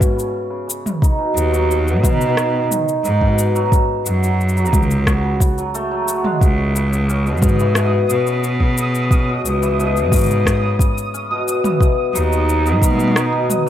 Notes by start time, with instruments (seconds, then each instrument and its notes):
Already playing: hammered dulcimer B2
0.00 hammered dulcimer C#4, kick, shaker
0.17 hammered dulcimer C#3, shaker
0.50 hammered dulcimer C#3
0.67 hammered dulcimer C#3, shaker
0.86 mid tom, shaker
1.02 hammered dulcimer D#4, kick, shaker
1.18 hammered dulcimer B2
1.36 cello D#2, shaker
1.52 hammered dulcimer F#3, shaker
1.70 hammered dulcimer B2, shaker
1.88 shaker
2.03 cello B2, hammered dulcimer D#4, kick, mid tom, shaker
2.21 hammered dulcimer D#3, shaker
2.37 cross-stick, shaker
2.54 hammered dulcimer D#3
2.71 hammered dulcimer D#3, mid tom, shaker
2.88 shaker
3.04 cello G#2, hammered dulcimer D#4, shaker
3.21 hammered dulcimer B2, kick
3.39 shaker
3.55 hammered dulcimer F#3, shaker
3.72 hammered dulcimer C#3, kick, shaker
4.06 cello F#2, hammered dulcimer F#4, shaker
4.23 hammered dulcimer F#3, shaker
4.41 shaker
4.49 shaker
4.57 hammered dulcimer F#3, shaker
4.66 shaker
4.73 cello C#2, hammered dulcimer F#3, kick, mid tom, shaker
4.82 shaker
4.91 shaker
5.07 hammered dulcimer F#4, kick, cross-stick, shaker
5.24 hammered dulcimer C#3
5.40 hammered dulcimer C#3, kick, shaker
5.58 hammered dulcimer F#3, shaker
5.74 hammered dulcimer A3, shaker
5.91 hammered dulcimer F#3
6.08 hammered dulcimer F#4, shaker
6.24 hammered dulcimer G#3, mid tom
6.41 cello C#2, synth texture D#6, kick, shaker
6.58 hammered dulcimer C#3
6.75 hammered dulcimer C#3, shaker
6.93 shaker
7.09 hammered dulcimer C#4, shaker
7.26 hammered dulcimer B2, shaker
7.37 shaker
7.42 cello G#2, kick, mid tom, shaker
7.49 shaker
7.59 hammered dulcimer E3, shaker
7.75 hammered dulcimer B2, cross-stick, shaker
8.10 cello B2, hammered dulcimer C#4, shaker
8.27 hammered dulcimer C#3, shaker
8.44 shaker
8.60 hammered dulcimer C#3, kick
8.78 hammered dulcimer C#3, shaker
8.95 shaker
9.11 hammered dulcimer C#4, kick, shaker
9.29 hammered dulcimer B2
9.45 cello C#2, shaker
9.62 hammered dulcimer E3, shaker
9.80 hammered dulcimer B2, shaker
9.97 shaker
10.12 cello G#2, hammered dulcimer C#4, kick, mid tom, shaker
10.16 shaker
10.18 shaker
10.21 shaker
10.23 shaker
10.26 shaker
10.28 hammered dulcimer C#3, shaker
10.31 shaker
10.46 kick, cross-stick, shaker
10.63 hammered dulcimer C#3
10.79 hammered dulcimer C#3, kick, shaker
10.98 shaker
11.14 hammered dulcimer C#4, shaker
11.31 hammered dulcimer B2
11.48 shaker
11.64 hammered dulcimer E3, mid tom, shaker
11.81 hammered dulcimer B2, kick, shaker
12.14 cello D#2, hammered dulcimer D#4, shaker
12.32 hammered dulcimer D#3, shaker
12.49 shaker
12.66 hammered dulcimer D#3, shaker
12.81 cello B2, hammered dulcimer D#3, kick, mid tom, shaker
12.86 mid tom
12.91 mid tom
12.95 mid tom
12.99 mid tom, shaker
13.03 mid tom
13.08 mid tom
13.12 hammered dulcimer D#4, mid tom
13.16 cross-stick, shaker
13.32 hammered dulcimer B2
13.50 mid tom, shaker